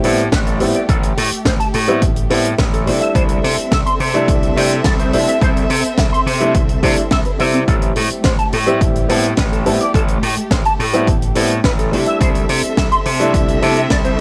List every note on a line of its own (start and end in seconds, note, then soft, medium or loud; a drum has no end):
0.00 0.19 G3 medium
0.00 2.83 A3 medium
0.00 2.83 G4 medium
0.00 0.08 A4 medium
0.00 open hi-hat loud
0.00 impact medium
0.04 0.27 A2 medium
0.04 0.19 B3 medium
0.04 0.20 C4 medium
0.04 0.20 E4 loud
0.18 closed hi-hat medium
0.32 0.62 A1 medium
0.32 0.39 B4 loud
0.32 kick loud
0.32 snare loud
0.32 closed hi-hat loud
0.47 0.57 A4 medium
0.47 closed hi-hat medium
0.60 0.72 A2 medium
0.60 0.76 G3 medium
0.60 0.76 B3 medium
0.60 0.76 C4 medium
0.60 0.76 E4 medium
0.60 0.65 A4 medium
0.60 open hi-hat medium
0.74 0.85 D5 loud
0.74 closed hi-hat medium
0.89 1.12 A1 loud
0.89 0.96 A4 loud
0.89 kick loud
0.89 closed hi-hat loud
1.03 closed hi-hat medium
1.17 1.29 A2 loud
1.17 1.21 A4 medium
1.17 open hi-hat loud
1.32 muted slap bass stroke soft
1.32 closed hi-hat medium
1.45 1.57 A1 medium
1.45 1.53 C5 medium
1.45 kick loud
1.45 snare loud
1.45 closed hi-hat loud
1.60 1.67 A5 medium
1.60 closed hi-hat medium
1.74 2.04 A2 loud
1.74 1.78 A4 medium
1.74 open hi-hat loud
1.88 2.03 G3 medium
1.88 2.03 B3 medium
1.88 2.03 C4 medium
1.88 2.04 E4 loud
1.88 1.92 G4 medium
1.88 closed hi-hat medium
2.02 2.25 A1 medium
2.02 kick loud
2.02 closed hi-hat loud
2.16 closed hi-hat medium
2.30 2.54 A2 medium
2.30 2.46 G3 medium
2.30 2.46 B3 medium
2.30 2.46 C4 medium
2.30 2.46 E4 medium
2.30 2.35 A4 medium
2.30 open hi-hat loud
2.44 closed hi-hat medium
2.58 2.89 A1 medium
2.58 2.66 B4 loud
2.58 kick loud
2.58 snare loud
2.58 closed hi-hat medium
2.73 2.83 A4 medium
2.73 closed hi-hat medium
2.86 2.99 C3 medium
2.86 4.10 G3 medium
2.86 4.11 A3 medium
2.86 7.64 C4 medium
2.86 4.11 D4 medium
2.86 4.11 E4 medium
2.86 7.64 A4 medium
2.86 2.91 C5 medium
2.86 7.64 E5 medium
2.86 open hi-hat loud
3.01 3.12 E5 loud
3.01 closed hi-hat medium
3.15 3.38 C2 loud
3.15 3.22 C5 loud
3.15 kick loud
3.15 closed hi-hat medium
3.29 closed hi-hat medium
3.44 3.55 C3 loud
3.44 3.48 C5 medium
3.44 open hi-hat loud
3.58 muted slap bass stroke soft
3.58 closed hi-hat medium
3.72 3.83 C2 medium
3.72 3.79 E5 medium
3.72 kick loud
3.72 snare loud
3.72 closed hi-hat loud
3.86 3.93 C6 medium
3.86 closed hi-hat medium
4.00 4.30 C3 loud
4.00 4.05 C5 medium
4.00 open hi-hat loud
4.14 4.53 G3 medium
4.14 4.53 A3 medium
4.14 4.54 D4 medium
4.14 4.54 E4 loud
4.14 4.19 B4 medium
4.14 closed hi-hat medium
4.28 4.52 C2 medium
4.28 kick loud
4.28 closed hi-hat loud
4.43 closed hi-hat medium
4.56 4.80 C3 medium
4.56 4.72 G3 medium
4.56 4.72 A3 medium
4.56 4.72 D4 medium
4.56 4.72 E4 loud
4.56 4.61 C5 medium
4.56 open hi-hat loud
4.71 closed hi-hat medium
4.84 5.15 C2 medium
4.84 4.92 D5 loud
4.84 kick loud
4.84 snare loud
4.84 closed hi-hat medium
4.99 5.10 C5 medium
4.99 closed hi-hat medium
5.13 5.25 C3 medium
5.13 5.29 G3 medium
5.13 5.29 A3 medium
5.13 5.29 D4 medium
5.13 5.29 E4 medium
5.13 5.18 C5 medium
5.13 open hi-hat loud
5.28 5.38 E5 loud
5.28 closed hi-hat medium
5.42 5.65 C2 loud
5.42 5.49 C5 loud
5.42 kick loud
5.42 closed hi-hat medium
5.57 closed hi-hat medium
5.70 5.82 C3 loud
5.70 5.74 C5 medium
5.70 open hi-hat loud
5.84 muted slap bass stroke soft
5.84 closed hi-hat medium
5.98 6.10 C2 medium
5.98 6.05 E5 medium
5.98 kick loud
5.98 snare loud
5.98 closed hi-hat medium
6.13 6.20 C6 medium
6.13 closed hi-hat medium
6.26 6.56 C3 loud
6.26 6.31 C5 medium
6.26 open hi-hat loud
6.40 6.56 G3 medium
6.40 6.56 A3 medium
6.40 6.56 D4 medium
6.40 6.56 E4 loud
6.40 6.45 B4 medium
6.40 closed hi-hat medium
6.55 6.78 C2 medium
6.55 kick loud
6.55 closed hi-hat loud
6.69 closed hi-hat medium
6.83 6.95 C3 loud
6.83 6.98 G3 medium
6.83 6.99 A3 medium
6.83 6.99 D4 medium
6.83 6.99 E4 medium
6.83 6.90 C5 loud
6.83 kick medium
6.83 open hi-hat loud
6.97 muted slap bass stroke soft
6.97 closed hi-hat medium
7.11 7.23 C2 medium
7.11 7.19 E5 loud
7.11 kick loud
7.11 snare loud
7.11 closed hi-hat medium
7.25 7.30 B4 medium
7.25 closed hi-hat soft
7.39 7.63 C3 medium
7.39 8.63 G3 medium
7.39 8.64 C4 medium
7.39 8.64 E4 medium
7.39 7.44 E5 loud
7.39 open hi-hat medium
7.54 7.58 C4 loud
7.54 closed hi-hat medium
7.68 7.91 A1 loud
7.68 11.89 A3 medium
7.68 11.89 G4 medium
7.68 7.75 A4 loud
7.68 kick loud
7.68 closed hi-hat medium
7.82 closed hi-hat medium
7.96 8.08 A2 loud
7.96 8.00 A4 medium
7.96 open hi-hat loud
8.10 muted slap bass stroke soft
8.10 closed hi-hat medium
8.24 8.36 A1 medium
8.24 8.32 C5 medium
8.24 kick loud
8.24 snare loud
8.24 closed hi-hat loud
8.39 8.46 A5 medium
8.39 closed hi-hat medium
8.52 8.83 A2 loud
8.52 8.57 A4 medium
8.52 open hi-hat medium
8.66 9.06 G3 medium
8.66 9.06 C4 medium
8.66 9.06 E4 loud
8.66 8.71 G4 medium
8.66 closed hi-hat medium
8.81 9.04 A1 medium
8.81 kick loud
8.81 closed hi-hat medium
8.96 closed hi-hat medium
9.09 9.33 A2 medium
9.09 9.25 G3 medium
9.09 9.25 B3 medium
9.09 9.25 C4 medium
9.09 9.25 E4 loud
9.09 9.14 A4 medium
9.09 open hi-hat loud
9.24 closed hi-hat soft
9.37 9.67 A1 medium
9.37 9.45 B4 loud
9.37 kick loud
9.37 snare loud
9.37 closed hi-hat medium
9.52 9.63 A4 medium
9.52 closed hi-hat medium
9.65 9.78 A2 medium
9.65 9.81 G3 medium
9.65 9.81 B3 medium
9.65 9.82 C4 medium
9.65 9.82 E4 medium
9.65 9.70 A4 medium
9.65 open hi-hat loud
9.80 9.91 D5 loud
9.80 closed hi-hat medium
9.94 10.18 A1 loud
9.94 10.02 A4 loud
9.94 kick loud
9.94 closed hi-hat loud
10.08 closed hi-hat medium
10.22 10.34 A2 loud
10.22 10.27 A4 medium
10.22 open hi-hat loud
10.37 muted slap bass stroke soft
10.37 closed hi-hat medium
10.51 10.63 A1 medium
10.51 10.58 C5 medium
10.51 kick loud
10.51 snare loud
10.51 closed hi-hat loud
10.65 10.72 A5 medium
10.65 closed hi-hat medium
10.79 11.09 A2 loud
10.79 10.84 A4 medium
10.79 open hi-hat medium
10.93 11.09 G3 medium
10.93 11.09 B3 medium
10.93 11.09 C4 medium
10.93 11.09 E4 loud
10.93 10.98 G4 medium
10.93 closed hi-hat medium
11.07 11.31 A1 medium
11.07 kick loud
11.07 closed hi-hat medium
11.22 closed hi-hat medium
11.35 11.59 A2 medium
11.35 11.51 G3 medium
11.35 11.51 B3 medium
11.35 11.51 C4 medium
11.35 11.52 E4 medium
11.35 11.40 A4 medium
11.35 open hi-hat loud
11.51 closed hi-hat soft
11.64 11.94 A1 medium
11.64 11.71 B4 loud
11.64 kick loud
11.64 snare loud
11.64 closed hi-hat medium
11.79 11.89 A4 medium
11.79 closed hi-hat medium
11.92 12.04 C3 medium
11.92 13.16 G3 medium
11.92 13.16 A3 medium
11.92 14.20 C4 medium
11.92 13.17 D4 medium
11.92 13.17 E4 medium
11.92 14.20 A4 medium
11.92 11.97 C5 medium
11.92 14.20 E5 medium
11.92 open hi-hat medium
12.06 12.17 E5 loud
12.06 closed hi-hat medium
12.21 12.44 C2 loud
12.21 12.28 C5 loud
12.21 kick loud
12.21 closed hi-hat loud
12.35 closed hi-hat medium
12.49 12.61 C3 loud
12.49 12.54 C5 medium
12.49 open hi-hat loud
12.63 muted slap bass stroke soft
12.63 closed hi-hat medium
12.77 12.89 C2 medium
12.77 12.85 E5 medium
12.77 kick loud
12.77 snare loud
12.77 closed hi-hat loud
12.92 12.99 C6 medium
12.92 closed hi-hat medium
13.05 13.35 C3 loud
13.05 13.10 C5 medium
13.05 open hi-hat loud
13.20 13.59 G3 medium
13.20 13.59 A3 medium
13.20 13.59 D4 medium
13.20 13.59 E4 loud
13.20 13.24 B4 medium
13.20 closed hi-hat medium
13.34 13.57 C2 medium
13.34 kick loud
13.34 closed hi-hat loud
13.48 closed hi-hat medium
13.62 13.86 C3 medium
13.62 13.78 G3 medium
13.62 13.78 A3 medium
13.62 13.78 D4 medium
13.62 13.78 E4 loud
13.62 13.67 C5 medium
13.62 open hi-hat loud
13.77 closed hi-hat medium
13.90 14.20 C2 medium
13.90 13.98 D5 loud
13.90 kick loud
13.90 snare loud
13.90 closed hi-hat loud
14.05 14.15 C5 medium
14.05 closed hi-hat medium